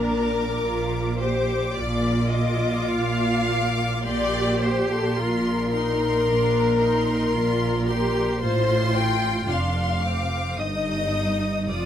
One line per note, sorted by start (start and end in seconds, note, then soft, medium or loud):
0.00 0.49 A#1 medium
0.00 0.49 A#2 medium
0.00 0.59 D4 medium
0.00 1.15 A#4 medium
0.00 1.16 D6 medium
0.62 1.62 A#1 medium
0.62 1.62 A#2 medium
0.62 1.19 F4 medium
1.19 1.76 G4 medium
1.19 1.76 C5 medium
1.19 2.32 D6 medium
1.74 2.79 A#1 medium
1.74 2.78 A#2 medium
1.74 4.06 F4 medium
1.74 2.33 D5 medium
2.32 2.91 D#5 medium
2.32 3.48 D6 medium
2.91 3.93 A#1 medium
2.91 3.92 A#2 medium
2.91 4.05 F5 loud
3.50 4.05 D6 medium
4.06 5.04 A#1 medium
4.06 5.04 A#2 medium
4.06 5.15 G4 medium
4.06 4.62 D5 loud
4.06 4.60 C6 medium
4.61 4.90 C5 medium
4.61 5.70 C6 medium
4.92 5.18 A4 medium
5.18 6.14 A#1 medium
5.18 6.14 A#2 medium
5.18 5.73 F4 medium
5.18 8.40 A#4 medium
5.72 6.26 D#4 medium
5.72 6.77 C6 medium
6.27 7.20 A#1 medium
6.27 7.20 A#2 medium
6.27 6.80 D4 medium
6.80 7.33 D#4 medium
6.80 7.84 C6 medium
7.33 8.27 A#1 medium
7.33 8.28 A#2 medium
7.33 7.87 F4 medium
7.87 8.41 G4 medium
7.87 8.39 C6 medium
8.40 9.44 A1 medium
8.40 9.45 A2 medium
8.40 9.47 F4 medium
8.40 8.94 C5 medium
8.40 9.44 C6 medium
8.95 9.48 G5 loud
9.47 10.56 F1 medium
9.47 10.57 F2 medium
9.47 10.03 D4 medium
9.47 10.57 F5 medium
9.47 10.01 C6 medium
10.03 10.58 C4 medium
10.03 10.57 D6 medium
10.56 11.69 G1 medium
10.56 11.70 G2 medium
10.56 11.70 D#4 medium
10.56 11.69 D#5 medium
10.56 11.69 D#6 medium
11.69 11.86 F1 soft
11.69 11.86 F2 medium
11.69 11.86 F4 medium
11.69 11.86 D5 medium
11.69 11.86 D#6 medium